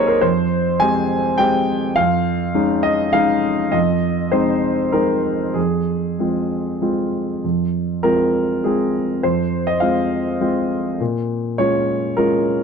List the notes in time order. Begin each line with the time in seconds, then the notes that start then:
Already playing: F2 A#3 D#4 G4 G#4 A#4 C5 C#5 D#5
0.07 A#4
0.21 F2 C5
0.80 G#3 C4 G4 G#5
1.38 G#3 C4 G4 G5
1.96 F2 F5
2.55 G#3 C#4 D#4
2.83 D#5
3.13 G#3 C#4 D#4 F5
3.72 F2 D#5
4.32 G#3 C4 D#4 C5
4.92 G#3 C4 D#4 A#4
5.54 F2 G#4
6.19 G#3 C4 F4
6.82 G#3 C4 F4
7.44 F2
8.03 G#3 C4 F4 A#4
8.64 G#3 C4 F4 G#4
9.23 F2 C5
9.67 D#5
9.80 G#3 C4 F4 F5
10.41 G#3 C4 F4
11.00 A#2
11.58 G#3 C#4 F4 C#5
12.17 G#3 C#4 F4 A#4